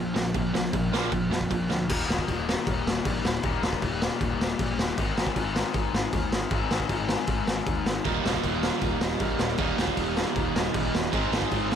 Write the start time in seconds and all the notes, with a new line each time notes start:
Already playing: A#1 A#2 F3
0.15 A#1 A#2 F3, snare
0.34 A#1 A#2 F3, kick, crash
0.53 A#1 A#2 F3, snare
0.72 A#1 A#2 F3, kick, crash
0.92 A#1 A#2 F3 A#3, snare
1.11 A#1 A#2 F3, kick, crash
1.30 F2 A#2 F3, snare
1.41 kick
1.50 A#1 A#2 F3, kick, crash
1.69 D2 A#2 F3, snare
1.88 D#1 D#2 A#2 D#3 G3 A#3 D#4, kick, crash
2.09 D#1, snare
2.19 kick
2.28 D#1, kick, crash
2.49 snare
2.67 D#1, kick, crash
2.85 D#1, snare
3.05 A#1, kick, crash
3.25 D#1, snare
3.43 D#1 D#2 A#2 D#3 G3 A#3 D#4, kick, crash
3.63 D#1, snare
3.73 kick
3.82 D#1, kick, crash
4.02 snare
4.21 D#1, kick, crash
4.40 D#1, snare
4.59 A#1, kick, crash
4.78 D#1, snare
4.98 G#1 G#2 D#3 G#3 C4 D#4, kick, crash
5.17 G#1, snare
5.27 kick
5.36 G#1, kick, crash
5.56 snare
5.74 G#1, kick, crash
5.93 G#1, snare
6.13 D#2, kick, crash
6.32 G#1, snare
6.50 G#1 G#2 D#3 G#3 C4 D#4, kick, crash
6.71 G#1, snare
6.80 kick
6.89 G#1, kick, crash
7.09 snare
7.27 G#1, kick, crash
7.47 G#1, snare
7.67 D#2, kick, crash
7.86 G#1, snare
8.04 D#1 D#2 A#2 D#3 G3 A#3 D#4, kick, crash
8.25 D#1, snare
8.34 kick
8.44 D#1, kick, crash
8.63 snare
8.81 D#1, kick, crash
9.01 D#1, snare
9.20 A#1, kick, crash
9.39 D#1, snare
9.58 D#1 D#2 A#2 D#3 G3 A#3, kick, crash
9.62 D#4
9.78 D#1, snare
9.88 kick
9.97 D#1, kick, crash
10.17 snare
10.36 D#1, kick, crash
10.56 D#1, snare
10.74 A#1, kick, crash
10.94 D#1, snare
11.12 G#1 G#2 D#3 G#3 C4 D#4, kick, crash
11.32 G#1, snare
11.42 kick
11.52 G#1, kick, crash
11.71 snare